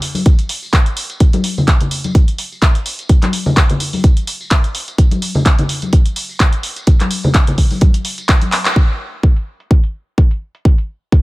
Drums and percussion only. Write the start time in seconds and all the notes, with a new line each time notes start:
0.02 open hi-hat
0.15 open hi-hat, tambourine, high conga
0.26 kick, closed hi-hat, tambourine
0.39 closed hi-hat, tambourine
0.49 open hi-hat
0.62 tambourine
0.73 kick, clap, closed hi-hat
0.86 closed hi-hat, tambourine
0.97 open hi-hat
1.10 closed hi-hat, tambourine
1.20 kick, closed hi-hat
1.33 closed hi-hat, tambourine, high conga
1.44 open hi-hat
1.58 tambourine, low conga
1.68 kick, clap, closed hi-hat, tambourine
1.80 closed hi-hat, tambourine, low conga
1.91 open hi-hat
2.04 closed hi-hat, tambourine, high conga
2.15 kick, closed hi-hat
2.28 closed hi-hat, tambourine
2.38 open hi-hat
2.52 tambourine
2.62 kick, clap, closed hi-hat
2.75 closed hi-hat, tambourine
2.86 open hi-hat
2.99 closed hi-hat, tambourine
3.09 kick, closed hi-hat
3.22 clap, closed hi-hat, tambourine, high conga
3.33 open hi-hat
3.46 tambourine, low conga
3.57 kick, clap, closed hi-hat
3.70 closed hi-hat, tambourine, low conga
3.80 open hi-hat
3.93 open hi-hat, tambourine, high conga
4.04 kick, closed hi-hat
4.17 closed hi-hat, tambourine
4.27 open hi-hat
4.40 tambourine
4.51 kick, clap, closed hi-hat
4.64 closed hi-hat, tambourine
4.75 open hi-hat
4.88 closed hi-hat, tambourine
4.98 kick, closed hi-hat, tambourine
5.11 closed hi-hat, tambourine, high conga
5.22 open hi-hat
5.34 tambourine, low conga
5.46 kick, clap, closed hi-hat
5.59 closed hi-hat, tambourine, low conga
5.69 open hi-hat
5.82 closed hi-hat, tambourine, high conga
5.93 kick, closed hi-hat, tambourine
6.06 closed hi-hat, tambourine
6.16 open hi-hat
6.29 tambourine
6.40 kick, clap, closed hi-hat
6.53 closed hi-hat, tambourine
6.63 open hi-hat
6.76 closed hi-hat, tambourine
6.87 kick, closed hi-hat, tambourine
7.00 clap, closed hi-hat, tambourine, high conga
7.11 open hi-hat
7.23 tambourine, low conga
7.34 kick, clap, closed hi-hat
7.47 closed hi-hat, tambourine, low conga
7.58 kick, open hi-hat
7.71 open hi-hat, tambourine, high conga
7.81 kick, closed hi-hat, tambourine, high conga
7.94 closed hi-hat, tambourine
8.05 open hi-hat
8.18 closed hi-hat, tambourine
8.29 kick, clap, closed hi-hat
8.41 closed hi-hat, tambourine, high conga
8.52 clap, open hi-hat
8.65 clap, closed hi-hat, tambourine
8.76 kick, closed hi-hat
8.89 closed hi-hat
9.23 kick, closed hi-hat
9.36 closed hi-hat
9.60 closed hi-hat
9.71 kick, closed hi-hat
9.84 closed hi-hat
10.18 kick, closed hi-hat
10.31 closed hi-hat
10.55 closed hi-hat
10.65 kick, closed hi-hat
10.78 closed hi-hat
11.12 kick, closed hi-hat